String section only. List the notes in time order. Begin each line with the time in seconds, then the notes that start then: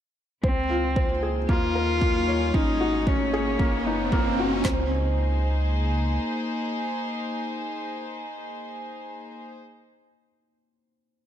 0.44 A#3
0.93 D#4 G#4 C5
1.97 C#5
4.64 A#3
4.71 D#4
4.82 G#4
4.89 C5